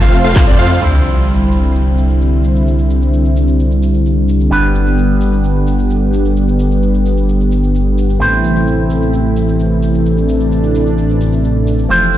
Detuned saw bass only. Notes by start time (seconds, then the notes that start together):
0.01 F1
0.24 F1
0.47 F2
0.59 F2
0.82 C2
4.51 G1
8.20 A1
11.90 F1